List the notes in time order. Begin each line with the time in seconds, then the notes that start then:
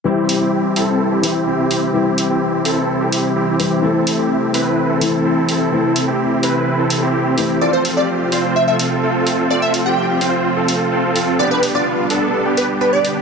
0.04 C3 E3 G3 C4 E4 G4
0.29 open hi-hat
0.41 C4 E4 G4
0.76 C4 E4 A4, open hi-hat
1.12 C4 E4 G4
1.22 E3 G3 C4 E4, open hi-hat
1.47 C4 E4 G4
1.71 open hi-hat
1.93 E3 G3 C4 E4 G4
2.18 open hi-hat
2.30 C4 E4 G4
2.65 C4 E4 A4, open hi-hat
3.01 C4 E4 G4
3.12 open hi-hat
3.36 C4 E4 G4
3.59 E3 G3 C4 E4, open hi-hat
3.82 E3 A3 C4 E4 A4
4.07 open hi-hat
4.19 C4 E4 G4
4.54 C4 E4 B4, open hi-hat
4.90 C4 E4 A4
5.00 E3 A3 C4 E4, open hi-hat
5.25 C4 E4 A4
5.49 open hi-hat
5.71 E3 A3 C4 E4 G4 A4
5.96 open hi-hat
6.08 C4 E4 G4
6.43 C4 E4 B4, open hi-hat
6.79 C4 E4 A4
6.90 open hi-hat
7.02 C4 E4 G4
7.37 E3 A3 C4 E4 G4, open hi-hat
7.61 F3 C4 F4 A4 D5
7.73 C5
7.85 open hi-hat
7.97 C4 F4 G4 D5
8.32 C4 F4 C5, open hi-hat
8.56 E5
8.68 C4 F4 A4 E5
8.79 open hi-hat
9.03 C4 F4 A4
9.27 open hi-hat
9.50 C4 F4 A4 D5
9.62 E5
9.74 open hi-hat
9.86 C4 F4 G4 G5
10.21 C4 F4 C5, open hi-hat
10.56 C4 F4 A4
10.68 open hi-hat
10.92 C4 F4 A4
11.16 open hi-hat
11.39 D3 G3 B3 D4 G4 B4 D5
11.51 B4
11.63 open hi-hat
11.75 B3 D4 F4 D5
12.10 B3 D4 A4, open hi-hat
12.45 B3 D4 G4
12.57 B4, open hi-hat
12.81 B3 D4 G4 B4
12.93 D5
13.05 open hi-hat